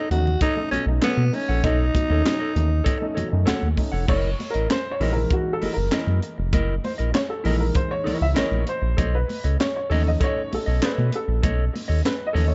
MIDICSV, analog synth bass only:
0, 0, Header, 1, 2, 480
1, 0, Start_track
1, 0, Tempo, 612245
1, 1283, Time_signature, 4, 2, 24, 8
1, 9836, End_track
2, 0, Start_track
2, 0, Title_t, "Analog synth bass"
2, 0, Program_c, 0, 38
2, 83, Note_on_c, 0, 39, 87
2, 286, Note_off_c, 0, 39, 0
2, 560, Note_on_c, 0, 35, 44
2, 609, Note_off_c, 0, 35, 0
2, 676, Note_on_c, 0, 35, 99
2, 781, Note_off_c, 0, 35, 0
2, 920, Note_on_c, 0, 47, 96
2, 1023, Note_off_c, 0, 47, 0
2, 1167, Note_on_c, 0, 34, 93
2, 1267, Note_off_c, 0, 34, 0
2, 1287, Note_on_c, 0, 35, 103
2, 1489, Note_off_c, 0, 35, 0
2, 1647, Note_on_c, 0, 39, 86
2, 1747, Note_off_c, 0, 39, 0
2, 2005, Note_on_c, 0, 39, 107
2, 2208, Note_off_c, 0, 39, 0
2, 2487, Note_on_c, 0, 42, 45
2, 2534, Note_off_c, 0, 42, 0
2, 2610, Note_on_c, 0, 42, 104
2, 2709, Note_off_c, 0, 42, 0
2, 2725, Note_on_c, 0, 39, 51
2, 2773, Note_off_c, 0, 39, 0
2, 2843, Note_on_c, 0, 39, 86
2, 2945, Note_off_c, 0, 39, 0
2, 3079, Note_on_c, 0, 29, 92
2, 3183, Note_off_c, 0, 29, 0
2, 3204, Note_on_c, 0, 30, 112
2, 3407, Note_off_c, 0, 30, 0
2, 3566, Note_on_c, 0, 33, 84
2, 3667, Note_off_c, 0, 33, 0
2, 3921, Note_on_c, 0, 34, 80
2, 4126, Note_off_c, 0, 34, 0
2, 4405, Note_on_c, 0, 30, 51
2, 4453, Note_off_c, 0, 30, 0
2, 4524, Note_on_c, 0, 30, 93
2, 4626, Note_off_c, 0, 30, 0
2, 4759, Note_on_c, 0, 42, 88
2, 4863, Note_off_c, 0, 42, 0
2, 5006, Note_on_c, 0, 29, 93
2, 5107, Note_off_c, 0, 29, 0
2, 5122, Note_on_c, 0, 30, 102
2, 5326, Note_off_c, 0, 30, 0
2, 5484, Note_on_c, 0, 34, 71
2, 5586, Note_off_c, 0, 34, 0
2, 5840, Note_on_c, 0, 34, 78
2, 6045, Note_off_c, 0, 34, 0
2, 6324, Note_on_c, 0, 37, 51
2, 6372, Note_off_c, 0, 37, 0
2, 6439, Note_on_c, 0, 37, 97
2, 6543, Note_off_c, 0, 37, 0
2, 6563, Note_on_c, 0, 34, 48
2, 6611, Note_off_c, 0, 34, 0
2, 6674, Note_on_c, 0, 34, 80
2, 6780, Note_off_c, 0, 34, 0
2, 6914, Note_on_c, 0, 34, 89
2, 7020, Note_off_c, 0, 34, 0
2, 7043, Note_on_c, 0, 35, 116
2, 7247, Note_off_c, 0, 35, 0
2, 7403, Note_on_c, 0, 37, 91
2, 7505, Note_off_c, 0, 37, 0
2, 7764, Note_on_c, 0, 39, 95
2, 7967, Note_off_c, 0, 39, 0
2, 8251, Note_on_c, 0, 35, 47
2, 8297, Note_off_c, 0, 35, 0
2, 8368, Note_on_c, 0, 35, 90
2, 8468, Note_off_c, 0, 35, 0
2, 8609, Note_on_c, 0, 47, 82
2, 8709, Note_off_c, 0, 47, 0
2, 8844, Note_on_c, 0, 34, 90
2, 8946, Note_off_c, 0, 34, 0
2, 8966, Note_on_c, 0, 35, 103
2, 9168, Note_off_c, 0, 35, 0
2, 9324, Note_on_c, 0, 39, 91
2, 9425, Note_off_c, 0, 39, 0
2, 9682, Note_on_c, 0, 39, 90
2, 9836, Note_off_c, 0, 39, 0
2, 9836, End_track
0, 0, End_of_file